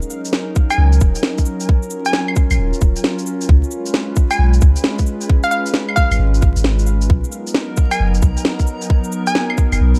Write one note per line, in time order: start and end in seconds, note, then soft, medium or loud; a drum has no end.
0.00 3.45 F#3 medium
0.00 7.06 C#4 medium
0.00 1.67 D#4 medium
0.00 3.45 A#4 medium
0.00 cabasa soft
0.10 cabasa medium
0.25 shaker medium
0.33 snare loud
0.56 kick loud
0.56 cabasa medium
0.70 0.94 G#5 medium
0.70 claves medium
0.70 shaker medium
0.78 0.99 C#2 medium
0.93 shaker soft
1.01 1.14 D#1 loud
1.01 kick loud
1.01 cabasa medium
1.15 shaker medium
1.23 snare loud
1.38 kick medium
1.38 shaker soft
1.46 cabasa medium
1.60 shaker medium
1.69 7.06 F4 medium
1.69 kick loud
1.83 cabasa soft
1.91 cabasa medium
2.05 2.68 G#5 medium
2.05 shaker medium
2.13 snare loud
2.28 claves medium
2.36 kick loud
2.36 cabasa medium
2.51 2.58 A#1 medium
2.51 claves medium
2.51 shaker medium
2.59 2.72 D#1 medium
2.73 shaker soft
2.81 2.95 D#1 loud
2.81 kick loud
2.81 cabasa medium
2.96 shaker medium
3.04 snare loud
3.19 shaker soft
3.27 cabasa medium
3.41 shaker medium
3.49 3.62 C#2 loud
3.49 7.06 G#3 medium
3.49 7.06 B4 medium
3.49 kick loud
3.64 cabasa soft
3.71 cabasa medium
3.86 shaker medium
3.94 snare loud
4.16 kick loud
4.16 cabasa medium
4.31 4.54 G#5 medium
4.31 claves medium
4.31 shaker medium
4.39 4.60 B1 medium
4.54 shaker soft
4.61 4.75 C#2 medium
4.61 kick loud
4.61 cabasa medium
4.76 shaker medium
4.84 snare loud
4.99 kick medium
4.99 shaker soft
5.06 cabasa medium
5.21 shaker medium
5.30 kick loud
5.43 5.49 F5 medium
5.43 cabasa soft
5.51 5.61 F5 medium
5.51 cabasa medium
5.66 shaker medium
5.74 snare loud
5.89 claves medium
5.96 6.61 F5 loud
5.96 kick loud
5.96 cabasa medium
6.11 6.19 G#1 medium
6.11 claves medium
6.11 shaker medium
6.19 6.41 G#1 medium
6.34 shaker soft
6.42 6.55 G#1 medium
6.42 kick loud
6.42 cabasa medium
6.56 7.08 G#1 loud
6.56 shaker medium
6.64 snare loud
6.79 shaker soft
6.87 cabasa medium
7.02 shaker medium
7.09 7.23 B1 loud
7.09 9.99 F#3 medium
7.09 9.99 B3 medium
7.09 9.99 D#4 medium
7.09 9.99 A#4 medium
7.09 kick loud
7.24 cabasa soft
7.32 cabasa medium
7.47 shaker medium
7.55 snare loud
7.77 kick loud
7.77 cabasa medium
7.91 8.15 G#5 medium
7.91 claves medium
7.91 shaker medium
8.00 8.21 F#1 medium
8.14 shaker soft
8.22 8.36 B1 loud
8.22 kick loud
8.22 cabasa medium
8.37 shaker medium
8.45 snare loud
8.59 kick medium
8.59 shaker soft
8.67 cabasa medium
8.82 shaker medium
8.90 kick loud
9.04 cabasa soft
9.12 cabasa medium
9.27 9.89 G#5 medium
9.27 shaker medium
9.35 snare medium
9.50 claves medium
9.58 kick medium
9.58 cabasa medium
9.72 9.80 F#1 medium
9.72 claves medium
9.72 shaker medium
9.81 9.94 B1 medium
9.95 shaker soft